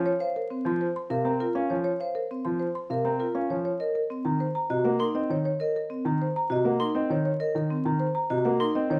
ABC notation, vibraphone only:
X:1
M:3/4
L:1/16
Q:1/4=100
K:Ebdor
V:1 name="Vibraphone"
z c z C z3 B z F z2 | z c z C z3 B z F z2 | z B z C z3 G z E z2 | z B z C z3 G z E z2 |
z B z C z3 G z E z2 |]